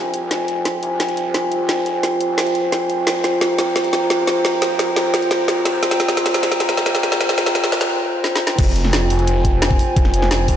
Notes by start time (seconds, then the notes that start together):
Already playing: C2 F4 C5 G5 G#5
0.14 closed hi-hat
0.31 F1, snare, closed hi-hat
0.48 closed hi-hat
0.65 snare, closed hi-hat
0.83 C2, closed hi-hat
1.00 C2, snare, closed hi-hat
1.09 closed hi-hat
1.17 closed hi-hat
1.34 snare, closed hi-hat
1.52 closed hi-hat
1.69 snare, closed hi-hat
1.86 F1, closed hi-hat
2.03 snare, closed hi-hat
2.21 F1, closed hi-hat
2.38 C2, snare, closed hi-hat
2.46 closed hi-hat
2.55 closed hi-hat
2.72 F1, snare, closed hi-hat
2.90 closed hi-hat
3.07 F1 A#5, snare, closed hi-hat
3.24 snare, closed hi-hat
3.41 snare, closed hi-hat
3.58 C2, snare, closed hi-hat
3.76 C2, snare, closed hi-hat
3.84 closed hi-hat
3.93 snare, closed hi-hat
4.10 snare, closed hi-hat
4.27 snare, closed hi-hat
4.45 snare, closed hi-hat
4.62 F1, snare, closed hi-hat
4.79 snare, closed hi-hat
4.96 F1, snare, closed hi-hat
5.14 snare, closed hi-hat
5.22 closed hi-hat
5.31 C2, snare, closed hi-hat
5.48 snare, closed hi-hat
5.65 snare, closed hi-hat
5.83 F1, snare, closed hi-hat
5.91 snare
6.00 snare, closed hi-hat
6.08 snare
6.17 snare, closed hi-hat
6.26 snare
6.34 C2, snare, closed hi-hat
6.43 snare
6.52 C2, snare, closed hi-hat
6.60 snare, closed hi-hat
6.69 snare, closed hi-hat
6.77 snare
6.86 snare, closed hi-hat
6.95 snare
7.03 snare, closed hi-hat
7.12 snare
7.21 snare, closed hi-hat
7.29 snare
7.38 F1, snare, closed hi-hat
7.46 snare
7.55 snare, closed hi-hat
7.64 snare
7.72 F1, snare, closed hi-hat
7.81 snare, closed hi-hat
8.24 snare
8.36 snare
8.47 snare
8.59 F1 F4 C5 G5 G#5, kick, closed hi-hat, crash
8.76 closed hi-hat
8.84 snare
8.93 snare, closed hi-hat
9.10 F1, open hi-hat
9.19 closed hi-hat
9.28 closed hi-hat
9.45 kick, closed hi-hat
9.62 F1, snare, closed hi-hat
9.71 kick
9.79 open hi-hat
9.96 F1, kick, closed hi-hat
10.05 snare
10.14 closed hi-hat
10.22 snare
10.31 snare, closed hi-hat
10.48 F1, kick, open hi-hat